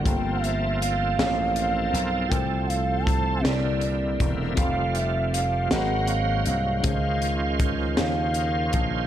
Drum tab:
HH |xxxxxx|xxxxxx|xxxxxx|xxxxxx|
SD |---o--|---o--|---o--|---o--|
BD |o-----|o-o--o|o-----|o-o--o|